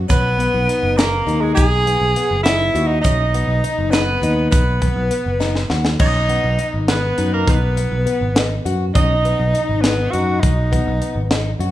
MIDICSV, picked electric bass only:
0, 0, Header, 1, 2, 480
1, 0, Start_track
1, 0, Key_signature, 5, "major"
1, 0, Tempo, 590551
1, 75, Time_signature, 5, 3, 24, 8
1, 9519, End_track
2, 0, Start_track
2, 0, Title_t, "Picked electric bass"
2, 0, Program_c, 0, 34
2, 77, Note_on_c, 0, 35, 74
2, 383, Note_off_c, 0, 35, 0
2, 443, Note_on_c, 0, 35, 88
2, 542, Note_off_c, 0, 35, 0
2, 676, Note_on_c, 0, 30, 79
2, 983, Note_off_c, 0, 30, 0
2, 1032, Note_on_c, 0, 39, 86
2, 1238, Note_off_c, 0, 39, 0
2, 1282, Note_on_c, 0, 35, 86
2, 1586, Note_off_c, 0, 35, 0
2, 1637, Note_on_c, 0, 35, 89
2, 1739, Note_off_c, 0, 35, 0
2, 1878, Note_on_c, 0, 30, 85
2, 2183, Note_off_c, 0, 30, 0
2, 2234, Note_on_c, 0, 39, 92
2, 2439, Note_off_c, 0, 39, 0
2, 2476, Note_on_c, 0, 35, 85
2, 2783, Note_off_c, 0, 35, 0
2, 2824, Note_on_c, 0, 35, 88
2, 2931, Note_off_c, 0, 35, 0
2, 3077, Note_on_c, 0, 30, 80
2, 3383, Note_off_c, 0, 30, 0
2, 3429, Note_on_c, 0, 39, 91
2, 3636, Note_off_c, 0, 39, 0
2, 3680, Note_on_c, 0, 35, 84
2, 3985, Note_off_c, 0, 35, 0
2, 4032, Note_on_c, 0, 35, 90
2, 4136, Note_off_c, 0, 35, 0
2, 4277, Note_on_c, 0, 30, 80
2, 4583, Note_off_c, 0, 30, 0
2, 4637, Note_on_c, 0, 39, 84
2, 4841, Note_off_c, 0, 39, 0
2, 4874, Note_on_c, 0, 35, 77
2, 5181, Note_off_c, 0, 35, 0
2, 5236, Note_on_c, 0, 35, 90
2, 5338, Note_off_c, 0, 35, 0
2, 5479, Note_on_c, 0, 32, 77
2, 5784, Note_off_c, 0, 32, 0
2, 5840, Note_on_c, 0, 42, 84
2, 6043, Note_off_c, 0, 42, 0
2, 6075, Note_on_c, 0, 35, 84
2, 6382, Note_off_c, 0, 35, 0
2, 6435, Note_on_c, 0, 35, 89
2, 6537, Note_off_c, 0, 35, 0
2, 6673, Note_on_c, 0, 32, 80
2, 6981, Note_off_c, 0, 32, 0
2, 7037, Note_on_c, 0, 42, 91
2, 7241, Note_off_c, 0, 42, 0
2, 7277, Note_on_c, 0, 35, 76
2, 7583, Note_off_c, 0, 35, 0
2, 7637, Note_on_c, 0, 35, 100
2, 7739, Note_off_c, 0, 35, 0
2, 7878, Note_on_c, 0, 32, 82
2, 8184, Note_off_c, 0, 32, 0
2, 8240, Note_on_c, 0, 42, 79
2, 8443, Note_off_c, 0, 42, 0
2, 8478, Note_on_c, 0, 35, 75
2, 8785, Note_off_c, 0, 35, 0
2, 8837, Note_on_c, 0, 35, 91
2, 8939, Note_off_c, 0, 35, 0
2, 9068, Note_on_c, 0, 32, 85
2, 9379, Note_off_c, 0, 32, 0
2, 9424, Note_on_c, 0, 42, 80
2, 9519, Note_off_c, 0, 42, 0
2, 9519, End_track
0, 0, End_of_file